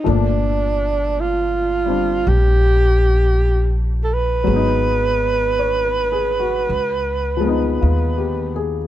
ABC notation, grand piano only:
X:1
M:4/4
L:1/16
Q:"Swing" 1/4=54
K:Gm
V:1 name="Grand piano"
z16 | z4 _d _c _A _G z4 (3F2 =G2 A2 |]
V:2 name="Grand piano"
[B,,F,A,D]6 [G,CD]8- [G,CD]2 | [_G,_A,_CE]8 z2 [F,A,CE]6 |]